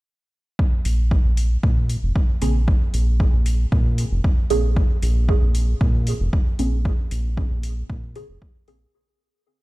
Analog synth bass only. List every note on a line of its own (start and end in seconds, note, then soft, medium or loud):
0.85 1.19 A#1 loud
1.25 1.58 A#1 medium
1.63 1.97 A#2 medium
2.03 2.12 F1 medium
2.42 2.75 A#1 medium
2.94 3.27 A#1 loud
3.33 3.66 A#1 medium
3.72 4.05 A#2 medium
4.11 4.21 F1 medium
4.50 4.84 A#1 medium
5.03 5.36 A#1 loud
5.42 5.75 A#1 medium
5.81 6.14 A#2 medium
6.20 6.29 F1 medium
6.59 6.92 A#1 loud
7.11 7.45 A#1 loud
7.51 7.84 A#1 medium
7.90 8.23 A#2 loud
8.29 8.38 F1 medium
8.68 8.87 A#1 loud